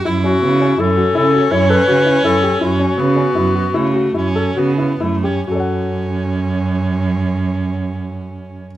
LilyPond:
<<
  \new Staff \with { instrumentName = "Clarinet" } { \time 7/4 \key fis \minor \tempo 4 = 150 r8 fis'4. a'4 a'4 cis''8 b'4. a'4 | fis'1. r4 | r1. r4 | }
  \new Staff \with { instrumentName = "Grand piano" } { \time 7/4 \key fis \minor e'8 cis'8 b8 cis'8 e'8 fis'8 e'8 fis'8 e'8 a'8 fis'8 e'8 e'8 g'8 | e'8 cis'8 b8 cis'8 e'8 fis'8 e'8 fis'8 e'8 a'8 fis'8 e'8 e'8 g'8 | <fis' a' cis'' fis''>1.~ <fis' a' cis'' fis''>4 | }
  \new Staff \with { instrumentName = "Viola" } { \time 7/4 \key fis \minor e'2 cis'1~ cis'4~ | cis'4 b2 a4 cis'4 b4 a8 cis'8 | cis'1.~ cis'4 | }
  \new Staff \with { instrumentName = "Cello" } { \clef bass \time 7/4 \key fis \minor fis,4 cis4 fis,4 cis4 fis,4 cis4 fis,4 | fis,4 cis4 fis,4 cis4 fis,4 cis4 fis,4 | fis,1.~ fis,4 | }
>>